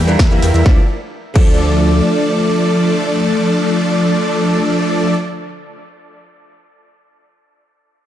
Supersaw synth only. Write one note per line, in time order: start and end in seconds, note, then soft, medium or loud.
0.00 0.16 G3 medium
0.00 0.16 A#3 medium
0.00 0.16 E4 medium
0.00 0.16 A#4 medium
0.00 0.16 G5 medium
0.42 0.52 G3 medium
0.42 0.52 A#3 medium
0.42 0.52 E4 medium
0.42 0.52 A#4 medium
0.42 0.52 G5 medium
0.54 0.64 G3 medium
0.54 0.64 A#3 medium
0.54 0.64 E4 medium
0.54 0.64 A#4 medium
0.54 0.64 E5 medium
0.66 0.79 F3 medium
0.66 0.79 A3 medium
0.66 0.79 D4 medium
0.66 0.79 D5 loud
1.36 5.14 F3 medium
1.36 5.14 A3 medium
1.36 5.14 D4 medium
1.36 5.14 A4 medium
1.36 5.14 D5 loud